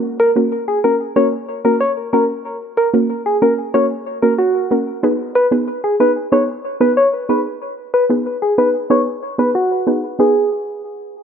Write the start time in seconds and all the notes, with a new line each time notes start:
Already playing: A#3 C#4 F#4 A#4
0.20 A#4
0.36 A#3 C#4 F#4 A#4
0.68 G#4
0.84 A#3 C#4 F#4 A#4
1.16 A#3 C#4 F#4 A#4 C#5
1.65 A#3 C#4 F#4 A#4
1.80 C#5
2.13 A#3 C#4 F#4 A#4
2.77 A#4
2.94 A#3 C#4 F#4 A#4
3.26 G#4
3.42 A#3 C#4 F#4 A#4
3.74 A#3 C#4 F#4 A#4 C#5
4.22 A#3 C#4 F#4 A#4
4.39 F#4
4.71 A#3 C#4 F#4 A#4
5.03 B3 D#4 G#4 B4
5.35 B4
5.51 B3 D#4 G#4 B4
5.84 G#4
6.00 B3 D#4 G#4 B4
6.32 B3 D#4 G#4 B4 C#5
6.80 B3 D#4 G#4 B4
6.97 C#5
7.29 B3 D#4 G#4 B4
7.94 B4
8.10 B3 D#4 G#4 B4
8.42 G#4
8.58 B3 D#4 G#4 B4
8.90 B3 D#4 G#4 B4 C#5
9.38 B3 D#4 G#4 B4
9.55 F#4
9.87 B3 D#4 G#4 B4
10.19 B3 D#4 G#4 B4